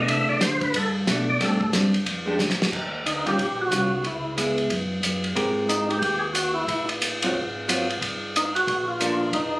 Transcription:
Already playing: E3 A3 D4
0.08 C3 E5, kick, ride
0.29 C3 D5
0.41 D3 C5, kick, snare, hi-hat pedal, ride
0.61 B4, kick, ride
0.74 G2 A4, kick, ride
1.07 B2 E3 A3 D4, kick, snare, hi-hat pedal, ride
1.29 D5
1.40 A2 G3 C4 D4 A4, kick, snare, ride
1.61 kick
1.73 G2 G3 C4 D4, kick, snare, hi-hat pedal, ride
1.94 ride
2.06 F2, kick, ride
2.26 G#3 D4 G4
2.38 D2, snare, hi-hat pedal
2.49 A#1, snare
2.60 G#1, snare
2.72 D#2, kick, crash
3.04 D2 D#4, hi-hat pedal, ride
3.25 D#3 G3 C#4 F4 G4, ride
3.38 A#1, kick, ride
3.61 F#4
3.71 C2 D#3 G3 C#4 F4, hi-hat pedal, ride
4.04 C#2 E4, kick, ride
4.37 G#3 B3 E4, hi-hat pedal, ride
4.58 ride
4.70 F#2, kick, ride
5.03 F#2, hi-hat pedal, ride
5.24 ride
5.35 G#2 G#3 C4 G4 A#4, kick, ride
5.69 D#4, hi-hat pedal, ride
5.89 G4, ride
5.99 D#2 G4, kick, ride
6.19 G#4
6.33 F#4, hi-hat pedal, ride
6.54 E4
6.68 A1, kick, ride
6.89 ride
7.02 hi-hat pedal, ride
7.22 F#3 C4 F4, ride
7.35 G#1, kick
7.68 F#3 C4 F4, hi-hat pedal, ride
7.90 ride
8.01 G1, kick, ride
8.36 D#4, hi-hat pedal, ride
8.55 F#4, ride
8.67 A#1, kick, ride
8.88 F4
8.99 F3 A#3 D4, hi-hat pedal, ride
9.33 F1 D#4, kick, ride

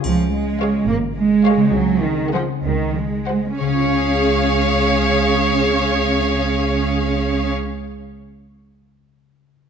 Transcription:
Already playing: C#3 C#4 F4
0.00 F3 G#4, triangle
0.05 C#2
0.32 G#3
0.60 G#4 C#5 F5
0.87 G#1 A#3
1.15 G#3
1.45 G#4 C#5 F5
1.56 C#3
1.61 C4
1.65 F#4
1.70 C#2 F#3 G#4
2.03 D#3
2.33 F3 G#4 C5 F#5
2.64 C#2 D#3
2.95 G#3
3.27 G#4 C5 F#5
3.60 C#2 C#3 C#4 G#4 C#5 F5
3.67 C#4
3.74 F4
3.81 G#4
3.88 F5

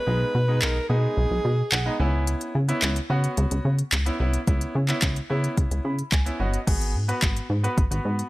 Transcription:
Already playing: B4
0.06 B1 G#3 B3 D#4
0.35 B2
0.48 G#3 B3 D#4
0.62 B1 A#4, clap
0.89 B2 G#3 B3 D#4 G#4
1.17 B1
1.31 B1
1.45 B2
1.72 B1 F#5, clap
1.86 G#3 B3 D#4
2.00 C#2 B3 C#4 E4 G#5
2.27 closed hi-hat
2.41 closed hi-hat
2.55 C#3
2.68 B3 C#4 E4, closed hi-hat
2.82 C#2, clap, closed hi-hat
2.96 closed hi-hat
3.10 C#3 B3 C#4 F#4
3.24 closed hi-hat
3.37 C#2, closed hi-hat
3.51 C#2, closed hi-hat
3.65 C#3
3.79 closed hi-hat
3.92 C#2, clap, closed hi-hat
4.06 B3 C#4 E4, closed hi-hat
4.20 C2 B3 C#4 E4
4.34 closed hi-hat
4.47 C#2 B3 C#4 E4, kick, closed hi-hat
4.61 closed hi-hat
4.75 C#3
4.88 B3 C#4 E4, clap, closed hi-hat
5.02 C#2, kick, clap, closed hi-hat
5.16 closed hi-hat
5.30 C#3 B3 C#4 E4
5.44 closed hi-hat
5.57 C#2, kick, closed hi-hat
5.71 C#2, closed hi-hat
5.85 C#3 B5
5.99 closed hi-hat
6.12 C#2 G#5, kick, clap, closed hi-hat
6.26 B3 C#4 E4, closed hi-hat
6.39 G1 B3 C#4 F#4 D#5
6.54 closed hi-hat
6.67 G#1 B3 F#4 G#4, kick, closed hi-hat, crash
6.81 closed hi-hat
6.95 G#2
7.08 B3 F#4 B4, closed hi-hat
7.22 G#1, kick, clap, closed hi-hat
7.37 closed hi-hat
7.50 G#2
7.63 B3 F#4 B4, closed hi-hat
7.78 G#1, kick, closed hi-hat
7.91 G#1 B3 F#4 B4, closed hi-hat
8.05 G#2
8.19 closed hi-hat

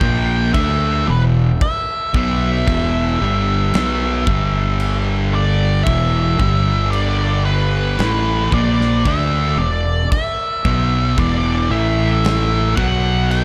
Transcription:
Already playing: G5
0.01 A#1 A#2 F3 A#3, kick
0.54 D2 D3 A3 D4 E5, kick, crash
1.07 E1 E2 B2 B4
1.61 E5, kick, crash
2.14 B1 B2 F#3 B3 E5, kick
2.67 E1 E2 B2 E3, kick, crash
3.21 G1 G2 D3 G3
3.74 B1 B2 F#3 B3, snare, crash
4.26 G1 G2 D3 G3, kick
4.80 crash
5.34 D5
5.83 E1 E2 B2 E3 E5, kick, crash
6.40 G1 G2 D3 G3, kick
6.91 D5, crash
7.45 B4
7.99 A1 A2 E3 A3, snare, crash
8.52 A#1 A#2 F3 A#3 D5, kick
8.81 snare
9.05 D2 D3 A3 D4 E5, kick, crash
9.56 E1 B2 D5
9.61 E2
10.12 E5, kick, crash
10.65 B1 B2 F#3 B3, kick
11.17 E1 E2 B2 E3 D5, kick, crash
11.70 A1 A2 E3 A3 E5
12.24 snare, crash
12.76 B1 B2 F#3 B3 F#5, kick
13.31 G5, crash

